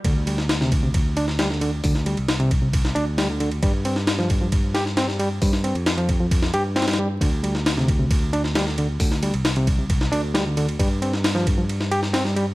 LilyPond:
<<
  \new Staff \with { instrumentName = "Reed electric piano" } { \clef bass \time 4/4 \key c \mixolydian \tempo 4 = 134 d16 r16 g16 r8 c16 r16 c16 r8 d'16 r16 g16 d16 d16 r16 | d16 r16 g16 r8 c16 r16 c16 r8 d'16 r16 g16 d16 d16 r16 | g16 r16 c'16 r8 f16 r16 f16 r8 g'16 r16 c'16 g16 g16 r16 | g16 r16 c'16 r8 f16 r16 f16 r8 g'16 r16 c'16 g16 g16 r16 |
d16 r16 g16 r8 c16 r16 c16 r8 d'16 r16 g16 d16 d16 r16 | d16 r16 g16 r8 c16 r16 c16 r8 d'16 r16 g16 d16 d16 r16 | g16 r16 c'16 r8 f16 r16 f16 r8 g'16 r16 c'16 g16 g16 r16 | }
  \new Staff \with { instrumentName = "Picked electric bass" } { \clef bass \time 4/4 \key c \mixolydian d,1 | d,8. c,4.~ c,16 d,4. | g,1 | g,8. f,4.~ f,16 g,4. |
d,1 | d,8. c,4.~ c,16 d,4. | g,1 | }
  \new DrumStaff \with { instrumentName = "Drums" } \drummode { \time 4/4 <bd cymr>8 cymr16 sn16 <cymr sn>16 sn16 <bd cymr>8 <bd cymr>8 cymr16 sn16 <cymr sn>16 sn16 cymr8 | <hho bd>16 sn16 cymr16 cymr16 <cymr sn>16 cymr16 <bd cymr>8 <bd cymr>16 sn16 cymr8 <cymr sn>8 cymr16 cymr16 | <bd cymr>8 cymr16 sn16 <cymr sn>16 sn16 <bd cymr>8 <bd cymr>8 <cymr sn>16 sn16 <cymr sn>16 sn16 cymr8 | <hho bd>16 sn16 cymr16 cymr16 <cymr sn>16 cymr16 <bd cymr>8 <bd cymr>16 sn16 cymr8 <cymr sn>32 <cymr sn>32 <cymr sn>32 <cymr sn>8 r32 |
<bd cymr>8 cymr16 sn16 <cymr sn>16 sn16 <bd cymr>8 <bd cymr>8 cymr16 sn16 <cymr sn>16 sn16 cymr8 | <hho bd>16 sn16 cymr16 cymr16 <cymr sn>16 cymr16 <bd cymr>8 <bd cymr>16 sn16 cymr8 <cymr sn>8 cymr16 cymr16 | <bd cymr>8 cymr16 sn16 <cymr sn>16 sn16 <bd cymr>8 cymr16 sn16 cymr16 sn16 <cymr sn>16 sn16 cymr8 | }
>>